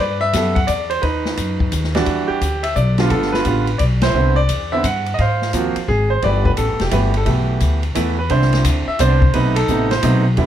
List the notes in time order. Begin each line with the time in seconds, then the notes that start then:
0.00 G2 B4 D5
0.21 E5
0.33 F#2 G3 B3 E4 A4, kick, snare, hi-hat pedal, ride
0.55 F#5, kick, ride
0.67 E2 D5, kick, hi-hat pedal, ride
0.90 C5, ride
1.02 D#2 D#4 B4, kick, ride
1.25 snare
1.37 F#2, kick, hi-hat pedal, ride
1.60 kick
1.72 D#2, kick, hi-hat pedal, ride
1.84 snare
1.95 E3 G3 D4 F#4, snare, ride
2.06 E2, kick, ride
2.28 G4, muted upright bass stroke
2.41 D2, kick, hi-hat pedal, ride
2.63 E5, ride
2.76 B1 D5, kick, hi-hat pedal
2.98 D3 G3 B3 F4, snare, ride
3.10 G1 F4 A4, kick, ride
3.22 snare
3.32 F4 B4, snare
3.45 A1 D3 G3 B3 F4, kick, hi-hat pedal, ride
3.67 ride
3.78 B1 D5, kick, hi-hat pedal, ride
4.02 E4 C5, snare, ride
4.13 C2 D3 B3 C4 E4
4.36 D5
4.49 E2, kick, hi-hat pedal, ride
4.72 D3 B3 C4 E4 E5
4.84 G2 F#5, kick, hi-hat pedal, ride
5.06 ride
5.14 D#5
5.19 G#2 C5 F5, kick, ride
5.42 snare
5.53 D#2 F3 A#3 C4 F#4, kick, hi-hat pedal, ride
5.76 muted upright bass stroke, ride
5.88 G#1 G#4, kick
6.10 C5
6.22 G1 E3 A3 B3 G4 B4 D5, kick, ride
6.45 B4, kick
6.57 A1 A4, kick, hi-hat pedal, ride
6.69 G1
6.80 E1 G4, snare, ride
6.91 G1 E3 A3 B3 G4 B4, kick, hi-hat pedal, ride
7.14 A4, ride
7.26 B1 E3 A3 B3 G4, kick, ride
7.60 D2, kick, hi-hat pedal, ride
7.83 ride
7.95 E2 E3 A3 B3 E4, kick, hi-hat pedal, ride
8.19 B4
8.30 C2 D3 C4 D4 E4 C5, kick, ride
8.42 snare
8.53 snare, ride
8.65 D2, kick, hi-hat pedal, ride
8.87 E5, muted upright bass stroke
8.99 C2 D3 B3 C4 D4 C5, kick, hi-hat pedal, ride
9.22 kick
9.33 B1 C3 A3 B3 D#4 B4, kick, ride
9.56 A4, ride
9.68 A1 C3 A3 B3 D#4, kick, hi-hat pedal
9.91 C5, snare, ride
10.03 B1 C3 A3 B3 D#4, kick, hi-hat pedal, ride
10.37 E2 D3 G3 B3 E4, kick, ride